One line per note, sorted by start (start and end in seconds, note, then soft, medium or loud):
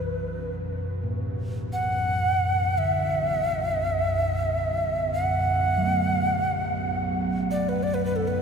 0.00 0.86 B1 medium
0.00 0.85 F#2 medium
0.00 1.28 B2 soft
0.00 0.31 E3 soft
0.00 0.52 B4 medium
0.86 8.42 B1 medium
0.86 8.42 F#2 medium
1.04 8.27 A2 soft
1.73 2.80 F#5 medium
2.77 8.42 D3 soft
2.77 5.12 E5 medium
5.14 7.19 F#5 medium
5.78 8.42 F#3 medium
5.83 8.42 A3 soft
5.87 8.42 B3 soft
7.51 7.70 D5 medium
7.69 7.85 B4 medium
7.83 7.96 D5 medium
7.94 8.04 B4 medium
8.05 8.17 B4 medium
8.16 8.29 A4 medium
8.28 8.42 B4 medium